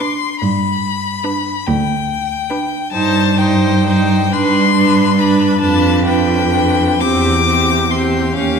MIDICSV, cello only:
0, 0, Header, 1, 2, 480
1, 0, Start_track
1, 0, Key_signature, 1, "major"
1, 0, Tempo, 837989
1, 239, Time_signature, 6, 3, 24, 8
1, 1684, Tempo, 910470
1, 2644, Tempo, 842697
1, 3124, Tempo, 921659
1, 4682, End_track
2, 0, Start_track
2, 0, Title_t, "Cello"
2, 0, Program_c, 0, 42
2, 0, Note_on_c, 0, 47, 49
2, 111, Note_off_c, 0, 47, 0
2, 240, Note_on_c, 0, 43, 58
2, 825, Note_off_c, 0, 43, 0
2, 961, Note_on_c, 0, 38, 58
2, 1552, Note_off_c, 0, 38, 0
2, 1682, Note_on_c, 0, 43, 62
2, 2330, Note_off_c, 0, 43, 0
2, 2417, Note_on_c, 0, 43, 59
2, 3039, Note_off_c, 0, 43, 0
2, 3122, Note_on_c, 0, 41, 62
2, 3772, Note_off_c, 0, 41, 0
2, 3858, Note_on_c, 0, 40, 53
2, 4473, Note_off_c, 0, 40, 0
2, 4561, Note_on_c, 0, 39, 55
2, 4682, Note_off_c, 0, 39, 0
2, 4682, End_track
0, 0, End_of_file